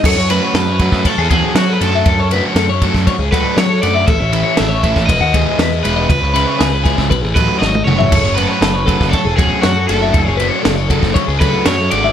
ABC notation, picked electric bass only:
X:1
M:4/4
L:1/16
Q:1/4=119
K:F#dor
V:1 name="Picked electric bass" clef=bass
F,, F,,2 z F,,3 F,, z E,, E,, z F,2 F,,2 | F,, F,,2 z F,,3 F,, z C,, C,, z F,2 F,,2 | A,,, A,,,2 z A,,,3 A,,, E,,, D,, D,, z E,,2 E,,,2 | C,, C,,2 z C,,3 C,, B,,, A,,, A,,, z G,,,2 F,,,2 |
F,,, F,,,2 z F,,,3 F,,, z E,,, E,,, z F,,2 F,,,2 | F,,, F,,,2 z F,,,3 F,,, z C,, C,, z F,,2 G,,,2 |]